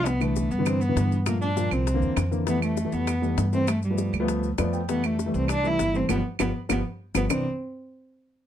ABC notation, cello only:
X:1
M:4/4
L:1/8
Q:1/4=199
K:C
V:1 name="Cello"
B, A,2 B, C B,2 z | _B, D2 C4 z | B, A,2 B,3 z C | A, G,4 z3 |
B, A,2 C D E2 C | B, z B, z B, z2 B, | C z6 z |]